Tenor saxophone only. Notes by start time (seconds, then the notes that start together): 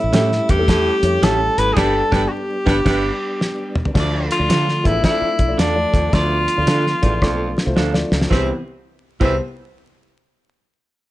Already playing: E4
0.50 G4
1.24 A4
1.59 B4
1.73 G#4
1.78 A4
2.28 F#4 G4
4.32 F4
4.87 E4
5.05 E4
5.59 D4
6.14 F4
8.30 C4
9.22 C4